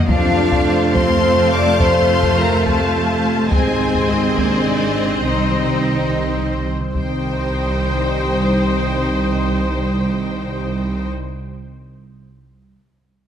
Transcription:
0.08 F2 C3 F3 A3 C4 D4 F4 C5 F5 A5, taiko
0.24 C4
0.38 C4
0.52 F3, taiko
0.66 F4
0.80 F4
0.94 F3 C4 C5 C6, taiko
1.09 A3
1.23 C4
1.37 F3
1.52 A3 D5 D6
1.66 A3
1.80 F3 A3 C5 C6, taiko
1.95 C4
2.09 C4
2.23 F3, taiko
2.38 F4 A#4 A#5
2.53 F4
2.66 F3 A4 A5, taiko
2.81 A3
2.96 C4
3.10 F3
3.24 A3
3.39 A3
3.51 G#1 C3 D#3 G#3 C4 G#4 C5 D#5 G#5, taiko
3.67 D#4
3.81 D#4
3.95 G#3, taiko
4.08 D#4 G#4 D#5
4.23 G#4
4.36 G#3 A#3 D4 D5, taiko
4.52 C4
4.66 G#3 D#4
4.81 G#3
4.95 C4
5.08 C4
5.22 C2 C3 D#3 G3 C4 D#4 C5 G5
5.38 G3
5.51 G3
5.66 C3
5.81 C4
5.95 C4
6.09 C3
6.24 D#3
6.38 G3
6.52 C3
6.67 D#3
6.81 D#3
6.94 C2 D#3 G3 C4 D#4 C5 G5, taiko

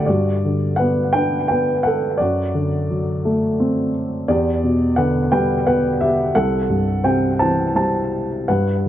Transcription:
0.06 G2 F#4 D5
0.45 D3
0.76 B3 B4 F#5
1.13 D4 B4 G5
1.48 B3 B4 G5
1.83 A4 F#5
2.18 F#2 F#4 D5
2.54 D3
2.90 F#3
3.25 A3
3.60 C4
4.28 E2 G4 D5
4.64 B2
4.96 D3 B4 F#5
5.32 G3 B4 G5
5.66 B3 B4 F#5
6.01 G4 E5
6.35 C2 A4 F#5
6.70 G2
7.04 C3 C5 G5
7.39 E3 C5 A5
7.75 G3 C5 A5
8.48 G2 B4 F#5

